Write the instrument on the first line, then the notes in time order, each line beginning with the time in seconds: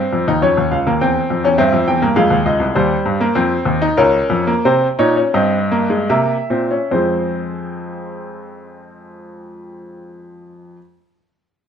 grand piano
Already playing: C4 C5
0.13 F2
0.28 D#2 D#4
0.42 F2 C#4 C#5
0.57 D#2
0.71 C#2 F5
0.87 D#2 A#3
1.01 E2 C4 G5
1.30 F2
1.44 E2 C#4
1.58 G2 C4 E5
1.73 F2
1.88 E2 G5
2.02 G2 A#3
2.16 F2 G#3 F5
2.30 D#2
2.46 C#2 D#5
2.60 C2
2.75 D#2 G3 C5
3.06 G2
3.21 A#3
3.35 F2 C4
3.65 D#2
3.82 D#4
3.97 C#2 C#4 A#4
4.30 F2
4.47 A#3
4.65 C3 C4 C5
4.99 A#2 D#4 C#5
5.16 C#4
5.34 G2 C4 D#5
5.71 A#3
5.90 G#3
6.10 C3 A#3 E5
6.50 A#2 C4
6.71 C#4
6.91 F2 F3 G#3 C4 C5